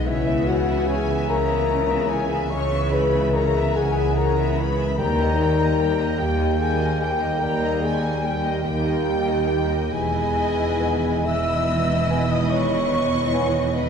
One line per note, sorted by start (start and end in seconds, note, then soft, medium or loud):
0.00 0.46 B3 soft
0.00 0.87 G#4 soft
0.00 1.28 B4 soft
0.04 1.15 C#2 medium
0.04 3.96 C#3 medium
0.04 1.15 C#3 medium
0.04 4.97 E3 medium
0.04 4.93 G#3 medium
0.04 1.30 B3 medium
0.04 0.25 C#4 medium
0.04 0.46 E4 medium
0.04 0.26 G#4 soft
0.04 0.25 C#5 medium
0.04 0.46 E5 medium
0.04 2.50 E5 medium
0.04 0.48 E5 medium
0.27 0.48 B3 medium
0.27 0.48 B4 soft
0.27 0.47 E5 soft
0.45 2.91 B3 soft
0.45 0.68 C#4 soft
0.45 0.87 F#4 medium
0.45 0.68 G#4 medium
0.45 0.67 C#5 soft
0.45 0.87 F#5 medium
0.45 0.88 F#5 medium
0.68 0.88 B3 soft
0.68 0.88 B4 medium
0.68 0.88 E5 medium
0.87 1.07 C#4 medium
0.87 1.29 G#4 medium
0.87 1.69 G#4 soft
0.87 1.07 G#4 soft
0.87 1.07 C#5 medium
0.87 1.28 G#5 medium
0.87 1.31 G#5 medium
1.09 1.29 B3 soft
1.09 1.29 B4 soft
1.09 1.29 E5 soft
1.28 2.36 C#2 medium
1.28 2.36 C#3 medium
1.28 2.52 A#3 medium
1.28 1.50 C#4 medium
1.28 1.50 G#4 medium
1.28 2.10 A#4 medium
1.28 3.75 B4 medium
1.28 1.49 C#5 medium
1.28 2.09 A#5 medium
1.28 2.11 A#5 medium
1.50 1.70 B3 medium
1.50 1.70 B4 medium
1.50 1.69 E5 soft
1.69 1.89 C#4 medium
1.69 3.33 G#4 soft
1.69 1.89 G#4 medium
1.69 1.88 C#5 soft
1.90 2.10 B3 medium
1.90 2.10 B4 soft
1.90 2.10 E5 soft
2.09 2.31 C#4 soft
2.09 4.57 E4 soft
2.09 2.50 G#4 medium
2.09 2.31 G#4 soft
2.09 2.30 C#5 soft
2.09 2.50 G#5 medium
2.09 2.51 G#5 medium
2.31 2.52 B3 soft
2.31 2.52 B4 medium
2.31 2.51 E5 soft
2.49 3.61 C#2 medium
2.49 3.60 C#3 medium
2.49 4.71 G#3 medium
2.49 5.01 G#3 soft
2.49 2.70 C#4 medium
2.49 2.70 G#4 medium
2.49 2.70 C#5 medium
2.49 2.92 C#5 medium
2.49 3.76 E5 medium
2.49 2.92 C#6 medium
2.72 2.93 B3 medium
2.72 2.92 B4 medium
2.72 2.92 E5 soft
2.90 5.01 B3 soft
2.90 3.13 C#4 medium
2.90 3.13 G#4 medium
2.90 3.33 B4 medium
2.90 3.14 C#5 soft
2.90 3.34 B5 medium
2.90 3.33 B5 medium
3.13 3.33 B3 soft
3.13 3.33 B4 medium
3.13 3.34 E5 medium
3.33 3.53 C#4 medium
3.33 3.53 G#4 soft
3.33 4.16 G#4 medium
3.33 3.75 A#4 medium
3.33 3.54 C#5 soft
3.33 3.77 A#5 medium
3.33 3.74 A#5 medium
3.55 3.76 B3 soft
3.55 3.75 B4 soft
3.55 3.75 E5 soft
3.75 4.84 C#2 medium
3.75 4.84 C#3 medium
3.75 3.96 C#4 soft
3.75 3.96 G#4 soft
3.75 4.17 G#4 medium
3.75 5.02 B4 medium
3.75 3.97 C#5 medium
3.75 4.71 F#5 medium
3.75 4.16 G#5 medium
3.75 4.18 G#5 medium
3.95 4.16 B3 soft
3.95 4.16 B4 soft
3.95 4.18 E5 medium
4.16 4.36 C#4 soft
4.16 5.01 G#4 soft
4.16 4.36 G#4 soft
4.16 4.58 A#4 medium
4.16 4.36 C#5 medium
4.16 4.57 A#5 medium
4.16 4.56 A#5 medium
4.37 4.57 B3 soft
4.37 4.57 B4 medium
4.37 4.58 E5 soft
4.57 4.77 C#4 soft
4.57 5.01 E4 soft
4.57 4.77 G#4 medium
4.57 4.99 B4 medium
4.57 4.78 C#5 soft
4.57 4.99 B5 medium
4.57 4.98 B5 medium
4.77 4.98 B3 soft
4.77 4.98 B4 soft
4.77 4.99 E5 soft
4.97 6.05 D#2 medium
4.97 9.73 D#3 medium
4.97 6.15 D#3 medium
4.97 8.88 D#3 medium
4.97 6.20 G3 medium
4.97 9.73 G3 medium
4.97 5.17 G3 medium
4.97 5.17 G4 medium
4.97 6.17 A#4 loud
4.97 5.36 G5 medium
4.97 5.18 G5 medium
4.97 5.92 A#5 medium
4.97 6.17 A#5 medium
5.18 5.38 A#3 medium
5.18 5.38 A#4 soft
5.18 5.40 D#5 medium
5.38 5.59 G3 soft
5.38 7.82 D#4 medium
5.38 5.58 G4 medium
5.38 5.78 G5 medium
5.38 5.60 G5 medium
5.59 5.79 A#3 medium
5.59 5.79 A#4 medium
5.59 5.80 D#5 soft
5.78 5.98 G3 medium
5.78 5.98 G4 medium
5.78 6.59 A#4 soft
5.78 8.60 G5 medium
5.78 5.98 G5 medium
5.99 6.19 A#3 soft
5.99 6.19 A#4 soft
5.99 6.19 D#5 medium
6.19 7.27 D#2 medium
6.19 7.28 D#2 medium
6.19 6.39 G3 medium
6.19 7.43 A#3 medium
6.19 6.39 G4 medium
6.19 6.60 G4 medium
6.19 8.65 D#5 medium
6.19 6.59 G5 medium
6.19 6.39 G5 medium
6.19 6.62 G5 medium
6.39 6.60 A#3 medium
6.39 6.60 A#4 medium
6.39 6.60 D#5 soft
6.59 6.78 G3 medium
6.59 6.78 G4 soft
6.59 7.00 G#4 medium
6.59 8.23 A#4 medium
6.59 6.79 G5 medium
6.59 7.01 G#5 medium
6.59 7.03 G#5 medium
6.79 7.00 A#3 soft
6.79 7.00 A#4 soft
6.79 7.01 D#5 soft
6.99 7.21 G3 soft
6.99 7.21 G4 soft
6.99 9.48 G4 medium
6.99 7.42 G4 medium
6.99 7.21 G5 medium
6.99 7.41 G5 medium
6.99 7.45 G5 medium
7.21 7.42 A#3 medium
7.21 7.42 A#4 soft
7.21 7.41 D#5 soft
7.40 8.50 D#2 medium
7.40 7.60 G3 medium
7.40 8.63 G3 medium
7.40 9.95 A#3 soft
7.40 7.60 G4 medium
7.40 7.82 A#4 medium
7.40 7.61 G5 medium
7.40 7.83 A#5 medium
7.62 7.82 A#3 medium
7.62 7.82 A#4 medium
7.62 7.83 D#5 medium
7.81 8.03 G3 medium
7.81 10.35 D#4 soft
7.81 8.03 G4 medium
7.81 8.22 G#4 medium
7.81 8.03 G5 soft
7.81 8.26 G#5 medium
7.81 8.23 G#5 medium
8.02 8.24 A#3 soft
8.02 8.24 A#4 soft
8.02 8.23 D#5 medium
8.23 8.43 G3 medium
8.23 8.62 G4 medium
8.23 8.43 G4 soft
8.23 9.06 A#4 medium
8.23 8.42 G5 soft
8.23 8.65 G5 medium
8.23 8.64 G5 medium
8.43 8.65 A#3 soft
8.43 8.65 A#4 soft
8.43 8.64 D#5 medium
8.63 9.76 D#2 medium
8.63 8.85 G3 medium
8.63 9.88 A#3 medium
8.63 9.74 G4 medium
8.63 8.85 G4 medium
8.63 11.25 D#5 soft
8.63 9.88 G5 medium
8.63 8.85 G5 medium
8.63 9.89 G5 medium
8.63 9.90 G5 medium
8.85 9.07 A#3 soft
8.85 9.07 A#4 soft
8.85 9.06 D#5 medium
9.06 9.26 G3 soft
9.06 9.26 G4 soft
9.06 9.25 G5 medium
9.28 9.48 A#3 soft
9.28 9.48 A#4 soft
9.28 9.48 D#5 soft
9.48 9.70 G3 medium
9.48 9.95 G4 soft
9.48 9.70 G4 medium
9.48 9.69 G5 soft
9.69 9.92 A#3 soft
9.69 9.92 A#4 soft
9.69 9.90 D#5 soft
9.90 13.89 E1 medium
9.90 13.89 E2 medium
9.90 13.89 D#3 medium
9.90 13.82 E3 medium
9.90 13.89 B3 medium
9.90 11.22 E4 medium
9.90 11.23 G#4 loud
9.90 11.22 B4 medium
9.90 11.22 D#5 medium
9.90 11.23 G#5 medium
9.90 11.26 G#5 medium
10.36 12.10 D#4 soft
10.80 10.96 B3 medium
10.80 11.68 B4 soft
10.80 10.96 G#5 medium
11.24 13.71 E4 medium
11.24 13.71 B4 medium
11.24 13.70 D#5 medium
11.24 13.74 D#5 medium
11.24 12.30 E5 medium
11.24 12.32 E6 medium
11.24 12.29 E6 medium
11.69 13.33 B4 soft
12.10 12.25 B3 medium
12.10 12.92 D#4 soft
12.10 12.24 G#5 medium
12.31 12.52 D#5 medium
12.31 12.51 D#6 medium
12.50 13.89 B3 soft
12.50 13.75 C#5 medium
12.50 13.47 C#6 medium
12.50 13.75 C#6 medium
12.93 13.89 D#4 soft
13.34 13.48 B3 medium
13.34 13.89 B4 soft
13.34 13.48 G#5 medium
13.74 13.89 E4 medium
13.74 13.89 B4 medium
13.74 13.89 B4 soft
13.74 13.89 D#5 medium
13.74 13.89 D#5 soft
13.74 13.89 B5 medium